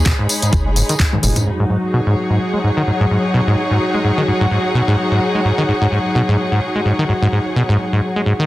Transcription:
0.00 1.48 G#3 medium
0.00 1.45 D#4 medium
0.00 1.46 G#4 medium
0.00 1.48 G#4 medium
0.00 1.46 C#5 medium
0.00 1.49 B5 medium
0.06 0.13 B2 loud
0.06 kick loud
0.06 clap loud
0.06 closed hi-hat medium
0.19 0.28 G#2 loud
0.29 open hi-hat loud
0.29 tambourine medium
0.42 0.51 G#2 medium
0.42 closed hi-hat medium
0.42 tambourine soft
0.53 0.82 F#1 medium
0.53 kick loud
0.53 closed hi-hat medium
0.53 tambourine soft
0.66 0.72 G#3 medium
0.76 0.83 G#2 medium
0.76 open hi-hat loud
0.76 tambourine medium
0.89 0.95 D#3 loud
0.89 closed hi-hat medium
0.89 tambourine soft
1.00 1.04 G#2 medium
1.00 kick loud
1.00 clap loud
1.00 closed hi-hat medium
1.13 1.18 G#2 loud
1.13 high tom medium
1.23 1.32 F#1 medium
1.23 1.30 G#2 medium
1.23 open hi-hat loud
1.23 mid tom medium
1.23 tambourine medium
1.36 1.43 G#2 medium
1.36 closed hi-hat medium
1.36 mid tom medium
1.36 tambourine soft
1.46 1.51 G#2 medium
1.46 8.46 F#3 medium
1.46 8.46 D#4 medium
1.46 8.46 F#4 medium
1.60 1.65 G#2 loud
1.70 1.77 G#2 medium
1.85 8.46 G#4 medium
1.91 2.01 B2 loud
1.91 8.46 C#5 medium
2.07 2.15 G#2 loud
2.21 8.46 F#5 medium
2.30 2.39 G#2 medium
2.54 2.59 G#3 medium
2.64 2.71 G#2 medium
2.77 2.83 D#3 loud
2.87 2.92 G#2 medium
3.00 3.06 G#2 loud
3.11 3.18 G#2 medium
3.34 3.41 B2 medium
3.47 3.56 G#2 medium
3.71 3.79 G#2 medium
3.94 4.00 G#3 medium
4.04 4.12 G#2 medium
4.18 4.23 D#3 loud
4.28 4.32 G#2 medium
4.41 4.47 G#2 medium
4.51 4.58 G#2 medium
4.75 4.82 B2 loud
4.88 4.96 G#2 loud
5.11 5.20 G#2 medium
5.35 5.40 G#3 medium
5.45 5.52 G#2 medium
5.58 5.64 D#3 loud
5.68 5.73 G#2 medium
5.82 5.87 G#2 medium
5.92 5.99 G#2 medium
6.15 6.22 B2 loud
6.28 6.37 G#2 medium
6.52 6.60 G#2 medium
6.75 6.81 G#3 medium
6.86 6.93 G#2 medium
6.99 7.04 D#3 loud
7.09 7.13 G#2 medium
7.22 7.28 G#2 loud
7.32 7.40 G#2 medium
7.56 7.63 B2 medium
7.69 7.78 G#2 loud
7.93 8.01 G#2 medium
8.16 8.22 G#3 medium
8.26 8.33 G#2 medium
8.39 8.45 D#3 loud

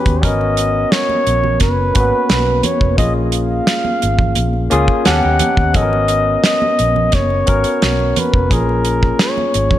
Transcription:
0.00 0.21 B3 medium
0.00 0.22 C#4 medium
0.00 0.24 F#4 medium
0.00 0.10 G4 medium
0.00 0.25 B4 medium
0.06 0.25 D#2 medium
0.06 kick medium
0.06 closed hi-hat soft
0.21 0.84 G#1 medium
0.21 1.05 B3 medium
0.21 1.06 C#4 medium
0.21 1.06 F#4 medium
0.21 1.07 A#4 medium
0.21 0.94 D#5 loud
0.21 kick loud
0.21 closed hi-hat medium
0.21 low conga medium
0.41 muted conga soft
0.57 closed hi-hat medium
0.92 1.61 C#5 medium
0.92 snare loud
0.92 closed hi-hat medium
0.92 muted conga soft
1.09 muted conga soft
1.09 high conga medium
1.27 1.57 A#1 medium
1.27 closed hi-hat medium
1.44 low conga medium
1.60 1.91 F#1 medium
1.60 2.65 B4 medium
1.60 kick medium
1.60 snare soft
1.60 closed hi-hat medium
1.60 muted conga soft
1.60 high conga medium
1.94 2.11 G#1 medium
1.94 2.01 A#3 medium
1.94 2.57 C#4 medium
1.94 2.58 F#4 medium
1.94 2.58 B4 medium
1.94 kick medium
1.94 closed hi-hat medium
2.00 2.60 B3 medium
2.29 2.61 B1 medium
2.29 snare loud
2.29 closed hi-hat medium
2.29 muted conga soft
2.29 high conga medium
2.63 2.97 C#5 medium
2.63 closed hi-hat medium
2.63 high conga medium
2.63 low conga medium
2.81 2.97 F1 medium
2.81 kick medium
2.97 3.59 A#1 medium
2.97 3.81 A#3 medium
2.97 3.81 C#4 medium
2.97 3.82 F4 medium
2.97 3.82 G#4 medium
2.97 3.14 D#5 medium
2.97 kick loud
2.97 closed hi-hat medium
2.97 muted conga soft
2.97 low conga medium
3.32 4.66 F5 medium
3.32 closed hi-hat medium
3.67 snare loud
3.67 closed hi-hat medium
3.85 muted conga soft
3.85 high conga medium
4.02 4.33 G#1 medium
4.02 closed hi-hat medium
4.19 kick medium
4.19 low conga medium
4.35 4.67 A#1 medium
4.35 closed hi-hat medium
4.35 high conga medium
4.53 muted conga soft
4.70 4.87 C#2 medium
4.70 5.05 A#3 medium
4.70 5.04 C#4 medium
4.70 5.06 F4 medium
4.70 5.04 F4 medium
4.70 5.04 G#4 medium
4.70 5.06 G#4 medium
4.70 closed hi-hat medium
4.88 kick medium
5.04 5.21 D#2 medium
5.04 5.60 B3 medium
5.04 5.61 C#4 medium
5.04 5.22 F#4 medium
5.04 5.62 G4 medium
5.04 5.22 A4 medium
5.04 5.61 F#5 medium
5.04 5.78 F#5 loud
5.04 snare medium
5.04 closed hi-hat medium
5.04 muted conga soft
5.04 high conga medium
5.23 5.39 D#2 medium
5.23 5.73 D#4 medium
5.23 5.72 G4 medium
5.23 muted conga soft
5.39 closed hi-hat medium
5.39 high conga medium
5.39 low conga medium
5.57 5.76 D#2 medium
5.57 kick medium
5.73 6.35 G#1 loud
5.73 6.57 B3 medium
5.73 6.57 C#4 medium
5.73 6.58 F#4 medium
5.73 5.82 A4 medium
5.73 6.44 D#5 loud
5.73 kick loud
5.73 closed hi-hat medium
5.73 low conga medium
5.82 6.61 A#4 medium
5.93 muted conga soft
6.08 closed hi-hat medium
6.44 7.16 D#5 loud
6.44 snare loud
6.44 closed hi-hat medium
6.62 high conga medium
6.79 7.09 A#1 medium
6.79 closed hi-hat medium
6.96 low conga medium
7.12 7.43 F#1 medium
7.12 8.20 C#5 medium
7.12 kick medium
7.12 snare soft
7.12 closed hi-hat medium
7.12 muted conga soft
7.12 high conga medium
7.30 muted conga soft
7.46 7.63 G#1 medium
7.46 8.09 B3 medium
7.46 8.09 C#4 medium
7.46 8.10 F#4 medium
7.46 8.10 A#4 medium
7.46 kick medium
7.46 closed hi-hat medium
7.64 closed hi-hat medium
7.82 8.12 B1 medium
7.82 snare medium
7.82 closed hi-hat medium
7.82 high conga medium
8.00 muted conga soft
8.16 8.56 B4 medium
8.16 closed hi-hat medium
8.16 high conga medium
8.16 low conga medium
8.34 8.49 F1 medium
8.34 kick medium
8.50 9.11 A#1 loud
8.50 9.33 A#3 medium
8.50 9.33 C#4 medium
8.50 9.34 F4 medium
8.50 9.34 G#4 medium
8.50 kick loud
8.50 closed hi-hat medium
8.50 muted conga soft
8.50 low conga medium
8.54 9.23 A#4 medium
8.69 muted conga soft
8.85 closed hi-hat medium
9.03 kick medium
9.19 9.79 C#5 medium
9.19 snare loud
9.19 closed hi-hat medium
9.19 muted conga soft
9.38 muted conga soft
9.38 high conga medium
9.54 9.79 G#1 medium
9.54 closed hi-hat medium
9.71 kick medium
9.71 low conga medium

